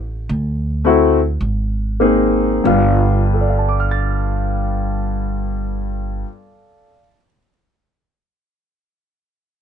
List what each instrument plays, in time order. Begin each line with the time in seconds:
Already playing: upright bass A1
0.29 upright bass D2
0.84 grand piano A3 C4 E4 F#4
1.41 upright bass G#1
2.00 grand piano A#3 C4 D#4 G#4
2.64 upright bass G1, grand piano G2 G3 B3 F4
3.34 grand piano A4
3.41 grand piano D5
3.49 grand piano F5
3.59 grand piano A5
3.69 grand piano D6
3.80 grand piano F6
3.91 grand piano A6